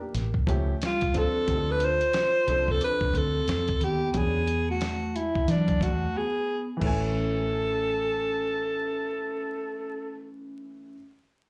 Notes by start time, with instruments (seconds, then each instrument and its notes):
0.01 upright piano A#3 G4
0.14 fingered electric bass A1, snare, closed hi-hat
0.34 kick
0.47 fingered electric bass C#2, upright piano F3 A3 C#4 G4, kick, closed hi-hat
0.82 vibraphone G3, snare, closed hi-hat
0.86 alto saxophone F4
1.01 kick, closed hi-hat
1.13 upright piano F3 C4 D4 A4, kick, closed hi-hat
1.17 vibraphone C4, alto saxophone A4
1.47 fingered electric bass D2, upright piano F3 C4 D4 G4, kick, closed hi-hat
1.56 upright piano A4
1.69 vibraphone D4, alto saxophone B4
1.80 vibraphone F4, closed hi-hat
1.85 alto saxophone C5
2.01 closed hi-hat
2.13 snare, closed hi-hat
2.47 fingered electric bass C2, upright piano F3 C4 D4 A4, closed hi-hat
2.68 vibraphone C4, alto saxophone A4, kick
2.81 vibraphone D4, alto saxophone B4, closed hi-hat
3.01 kick
3.14 fingered electric bass D2, vibraphone C4, alto saxophone A4, kick, closed hi-hat
3.48 fingered electric bass F2, snare, closed hi-hat
3.68 kick, closed hi-hat
3.80 fingered electric bass D#2, vibraphone B3, alto saxophone G4, closed hi-hat
4.08 vibraphone B3
4.12 fingered electric bass E2, upright piano F#3 C#4 D4 G#4, vibraphone B3, alto saxophone G4, kick, closed hi-hat
4.18 alto saxophone G#4
4.47 closed hi-hat
4.68 vibraphone A3, alto saxophone F#4
4.81 snare, closed hi-hat
5.15 vibraphone G#3, alto saxophone E4, closed hi-hat
5.35 kick
5.48 fingered electric bass E3, vibraphone F#3, alto saxophone D4, snare, closed hi-hat
5.68 kick, closed hi-hat
5.81 fingered electric bass E2, vibraphone A3, alto saxophone F#4, kick, closed hi-hat
6.15 vibraphone B3, alto saxophone G#4
6.77 upright piano E3 A3
6.81 fingered electric bass A1, vibraphone C#4, upright piano C#4, alto saxophone A4, kick, crash
6.86 upright piano G#5